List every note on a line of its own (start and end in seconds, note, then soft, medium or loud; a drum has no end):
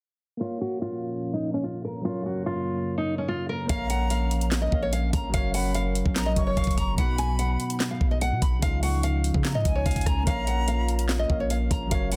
0.37 2.03 A#2 medium
0.37 2.03 F3 medium
0.37 2.00 A#3 medium
0.37 2.03 C#4 medium
0.37 0.59 F4 loud
0.37 2.01 A#4 medium
0.42 2.02 C#5 medium
0.42 2.04 F5 medium
0.61 0.80 F#4 medium
0.82 1.30 F4 medium
1.33 1.52 D#4 medium
1.54 1.63 C#4 medium
1.64 1.83 F4 medium
1.84 2.03 A#4 medium
2.01 3.68 F#2 medium
2.01 3.68 C#3 medium
2.01 3.64 F#3 medium
2.01 3.68 A#3 medium
2.01 3.66 C#4 medium
2.01 2.24 F4 loud
2.06 3.67 A#4 medium
2.06 3.68 C#5 medium
2.26 2.44 F#4 medium
2.46 2.94 F4 medium
2.98 3.16 D#4 medium
3.18 3.27 C#4 medium
3.28 3.47 F4 medium
3.49 3.68 A#4 medium
3.66 4.68 A#1 loud
3.66 5.32 F3 medium
3.66 4.68 A#3 medium
3.66 5.32 A#3 medium
3.66 6.95 C#4 medium
3.66 4.69 A#4 medium
3.66 3.88 F5 loud
3.66 kick loud
3.66 closed hi-hat medium
3.70 4.71 C#5 medium
3.70 4.72 F5 medium
3.70 4.48 A#5 loud
3.90 4.09 F#5 medium
3.90 closed hi-hat medium
4.10 4.59 F5 medium
4.10 closed hi-hat medium
4.31 closed hi-hat medium
4.41 closed hi-hat medium
4.52 snare loud
4.52 clap medium
4.52 closed hi-hat medium
4.62 4.80 D#5 medium
4.70 5.12 A#1 loud
4.70 5.33 A#3 medium
4.70 5.33 A#4 medium
4.70 5.34 C#5 soft
4.70 5.35 F5 medium
4.70 kick medium
4.82 4.92 C#5 medium
4.93 5.12 F5 medium
4.93 closed hi-hat medium
5.13 5.33 A#1 loud
5.13 5.32 A#5 medium
5.13 kick loud
5.13 closed hi-hat medium
5.30 6.32 F#3 medium
5.30 6.34 F#4 medium
5.30 closed hi-hat medium
5.34 6.03 F#1 loud
5.34 8.59 F#3 medium
5.34 6.96 A#4 medium
5.34 6.35 A#4 medium
5.34 6.36 C#5 medium
5.34 5.53 F5 loud
5.34 kick loud
5.54 5.73 F#5 medium
5.54 5.74 B5 medium
5.54 open hi-hat medium
5.75 6.23 F5 medium
5.75 closed hi-hat medium
5.95 closed hi-hat medium
6.06 6.35 A#1 loud
6.06 kick loud
6.16 6.36 A#5 medium
6.16 snare loud
6.16 clap medium
6.16 closed hi-hat medium
6.26 6.45 D#5 medium
6.34 6.56 F#1 loud
6.34 6.97 F#3 medium
6.34 6.98 F#4 soft
6.34 6.98 A#4 medium
6.34 6.99 C#5 medium
6.34 6.94 C#6 medium
6.34 kick medium
6.34 closed hi-hat medium
6.47 6.56 C#5 medium
6.57 6.77 F#1 loud
6.57 6.76 F5 medium
6.57 kick medium
6.57 closed hi-hat medium
6.64 kick medium
6.64 closed hi-hat medium
6.71 closed hi-hat medium
6.77 6.97 F#1 loud
6.77 6.96 A#5 medium
6.77 kick loud
6.77 closed hi-hat medium
6.94 8.57 B2 medium
6.94 8.58 B3 medium
6.98 7.57 B1 loud
6.98 8.61 B3 medium
6.98 8.61 D#4 loud
6.98 8.60 D#4 medium
6.98 8.61 F#4 medium
6.98 7.17 F#5 loud
6.98 7.76 B5 loud
6.98 kick loud
6.98 closed hi-hat loud
7.18 7.37 G#5 medium
7.18 closed hi-hat medium
7.39 7.87 F#5 medium
7.39 closed hi-hat medium
7.60 closed hi-hat medium
7.70 closed hi-hat medium
7.80 snare loud
7.80 clap medium
7.80 closed hi-hat medium
7.91 8.09 F5 medium
8.01 8.33 B1 loud
8.01 kick loud
8.11 8.20 D#5 medium
8.21 8.40 F#5 medium
8.21 closed hi-hat medium
8.32 8.41 B2 loud
8.42 8.62 B1 loud
8.42 8.61 B5 medium
8.42 kick loud
8.42 closed hi-hat medium
8.59 9.32 C#2 loud
8.59 10.22 C#3 medium
8.59 10.25 F3 medium
8.59 10.23 C#4 medium
8.59 12.16 C#4 medium
8.59 10.25 D#4 medium
8.59 8.81 F5 loud
8.59 kick loud
8.59 closed hi-hat medium
8.64 10.24 D#4 medium
8.64 10.26 F4 medium
8.83 9.02 F#5 medium
8.83 9.02 C#6 medium
8.83 open hi-hat medium
9.03 9.52 F5 medium
9.03 closed hi-hat medium
9.24 closed hi-hat medium
9.34 9.56 C#3 loud
9.34 kick medium
9.45 9.64 A#5 medium
9.45 snare loud
9.45 clap medium
9.45 closed hi-hat medium
9.55 9.65 G#2 loud
9.55 9.74 D#5 medium
9.65 9.85 C#2 loud
9.65 10.23 G#5 medium
9.65 kick loud
9.65 closed hi-hat medium
9.75 9.85 C#5 medium
9.86 10.05 C#2 loud
9.86 10.05 F5 medium
9.86 kick medium
9.86 closed hi-hat medium
9.91 closed hi-hat medium
9.96 kick loud
9.96 closed hi-hat medium
10.01 closed hi-hat medium
10.06 10.26 C#2 loud
10.06 10.25 A#5 medium
10.06 kick loud
10.06 cross-stick loud
10.06 closed hi-hat medium
10.23 11.26 A#1 loud
10.23 11.26 A#3 medium
10.23 11.90 A#3 medium
10.23 11.90 F4 medium
10.23 11.27 A#4 medium
10.23 11.05 A#5 loud
10.23 kick loud
10.23 closed hi-hat medium
10.27 11.28 C#5 medium
10.27 10.46 F5 loud
10.27 11.29 F5 medium
10.47 10.66 F#5 medium
10.47 closed hi-hat medium
10.68 11.16 F5 medium
10.68 closed hi-hat medium
10.89 closed hi-hat medium
10.99 closed hi-hat medium
11.09 snare loud
11.09 clap medium
11.09 closed hi-hat medium
11.19 11.38 D#5 medium
11.28 11.69 A#1 loud
11.28 11.90 A#3 medium
11.28 11.91 A#4 medium
11.28 11.92 C#5 soft
11.28 11.92 F5 medium
11.28 kick loud
11.40 11.49 C#5 medium
11.50 11.69 F5 medium
11.50 closed hi-hat medium
11.71 11.90 A#1 loud
11.71 11.90 A#5 medium
11.71 kick loud
11.71 closed hi-hat medium
11.87 12.16 F#3 medium
11.87 12.16 F#4 medium
11.91 12.16 F#1 loud
11.91 12.16 F#3 medium
11.91 12.16 A#4 medium
11.91 12.16 C#5 medium
11.91 12.10 F5 loud
11.91 kick loud
11.91 closed hi-hat medium
12.12 12.16 F#5 medium
12.12 12.16 B5 medium
12.12 open hi-hat medium